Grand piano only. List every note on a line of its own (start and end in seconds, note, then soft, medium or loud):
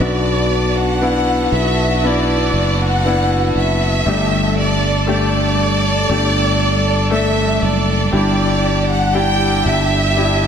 0.00 1.48 B2 soft
0.00 0.96 B3 medium
0.00 0.96 D4 soft
0.00 0.96 F#4 medium
1.01 1.98 B3 medium
1.01 1.98 D4 medium
1.01 1.98 E4 medium
2.03 3.00 B3 medium
2.03 3.00 D4 soft
2.03 3.00 E4 medium
3.05 4.01 B3 medium
3.05 4.02 D4 soft
3.05 4.02 E4 medium
4.06 5.55 G2 soft
4.06 5.03 A3 medium
4.06 5.03 D4 soft
4.06 5.03 G4 medium
5.07 6.04 A3 medium
5.07 6.04 D4 medium
5.07 6.05 G4 medium
6.09 7.06 A3 medium
6.09 7.06 D4 medium
6.09 7.07 G4 medium
7.10 8.07 A3 medium
7.10 8.08 D4 medium
7.10 8.08 A4 medium
8.11 9.61 G2 soft
8.11 9.09 D4 medium
8.11 9.09 E4 soft
8.11 9.09 G4 medium
9.14 10.11 D4 medium
9.14 10.11 E4 medium
9.14 10.11 G4 medium
10.16 10.47 D4 medium
10.16 10.47 E4 medium
10.16 10.47 G4 medium